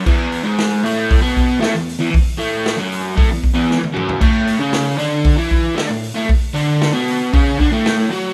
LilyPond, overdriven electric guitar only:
\new Staff \with { instrumentName = "Overdriven electric guitar" } { \clef bass \time 4/4 \key e \mixolydian \tempo 4 = 116 <e, e>8. <gis, gis>8. <a, a>8. <b, b>8. <a, a>16 e,8 <e, e>16 | r8 <a, a>8. <fis, fis>8. <a, a>16 e,8 <e, e>8 r16 <fis, fis>8 | <a, a>8. <cis cis'>8. <d d'>8. <e e'>8. <d d'>16 a,8 <a, a>16 | r8 <d d'>8. <b, b>8. <cis cis'>8 <d d'>16 <a, a>8. <fis fis'>8 | }